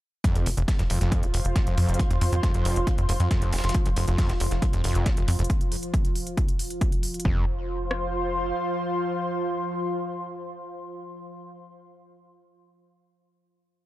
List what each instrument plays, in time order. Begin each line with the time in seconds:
0.24 acid bass F2, ambient pad F3 F4, analog synth pad F4, kick, closed hi-hat
0.35 analog synth bass F1, closed hi-hat
0.46 analog synth bass F1, acid bass D#2, closed hi-hat, open hi-hat
0.57 analog synth bass F1, acid bass F1, closed hi-hat
0.66 analog synth pad C5, kick, snare, closed hi-hat, open hi-hat
0.74 analog synth pad F5
0.79 analog synth bass F1, acid bass F2, snare, closed hi-hat
0.90 analog synth bass F1, acid bass F2, closed hi-hat, open hi-hat
1.01 analog synth bass F1, acid bass F2, snare, closed hi-hat
1.12 kick, closed hi-hat
1.23 analog synth bass F1, acid bass D#2, closed hi-hat
1.32 analog synth bass F1, acid bass F1, analog synth pad C6, closed hi-hat, open hi-hat
1.45 analog synth bass F1, closed hi-hat
1.56 acid bass F2, kick, snare, closed hi-hat
1.67 analog synth bass F1, acid bass F2, closed hi-hat
1.77 analog synth bass F2, acid bass F2, closed hi-hat, open hi-hat
1.89 analog synth bass F1, closed hi-hat
1.94 closed hi-hat
1.99 acid bass D#2, kick, closed hi-hat
2.10 acid bass F1, analog synth bass F2, closed hi-hat
2.21 analog synth bass F2, closed hi-hat, open hi-hat
2.32 analog synth bass F2, acid bass F2, closed hi-hat
2.43 acid bass F2, kick, snare, closed hi-hat
2.54 analog synth bass F1, acid bass F2, closed hi-hat
2.65 analog synth bass F1, closed hi-hat, open hi-hat
2.76 analog synth bass F1, acid bass D#2, closed hi-hat
2.87 acid bass F1, kick, closed hi-hat
2.98 analog synth bass F2, closed hi-hat
3.09 analog synth bass F1, acid bass F2, closed hi-hat, open hi-hat
3.20 analog synth bass F2, acid bass F2, closed hi-hat
3.31 acid bass F2, kick, snare, closed hi-hat
3.42 analog synth bass F1, closed hi-hat
3.52 analog synth bass F1, acid bass D#2, snare, open hi-hat
3.58 snare, open hi-hat
3.64 analog synth bass F1, acid bass F1, snare, closed hi-hat, open hi-hat
3.69 snare, closed hi-hat, open hi-hat
3.74 kick, closed hi-hat
3.86 analog synth bass F1, acid bass F2, closed hi-hat
3.96 analog synth bass F1, acid bass F2, closed hi-hat, open hi-hat
4.08 analog synth bass F1, acid bass F2, closed hi-hat
4.18 kick, snare, closed hi-hat, open hi-hat
4.29 analog synth bass F1, acid bass D#2, snare, closed hi-hat
4.40 analog synth bass F1, acid bass F1, closed hi-hat, open hi-hat
4.51 analog synth bass F1, snare, closed hi-hat
4.62 acid bass F2, kick, closed hi-hat
4.73 analog synth bass F1, acid bass F2, closed hi-hat
4.84 analog synth bass F1, acid bass F2, closed hi-hat, open hi-hat
4.95 analog synth bass F1, closed hi-hat
5.06 acid bass D#2, kick, snare, closed hi-hat
5.17 analog synth bass F1, acid bass F1, closed hi-hat
5.28 analog synth bass F2, closed hi-hat, open hi-hat
5.39 analog synth bass F1, acid bass F2, closed hi-hat
5.44 closed hi-hat
5.50 kick, closed hi-hat
5.61 closed hi-hat
5.72 open hi-hat
5.83 closed hi-hat
5.94 kick, closed hi-hat
6.05 closed hi-hat
6.15 open hi-hat
6.27 closed hi-hat
6.37 kick, closed hi-hat
6.48 closed hi-hat
6.59 open hi-hat
6.70 closed hi-hat
6.81 kick, closed hi-hat
6.92 closed hi-hat
7.03 open hi-hat
7.14 closed hi-hat
7.20 closed hi-hat
7.25 analog synth bass F1, acid bass F2, ambient pad F3 F4, analog synth pad F4, kick
7.32 analog synth pad C5
7.38 analog synth pad F5
7.45 analog synth pad C6
7.91 cross-stick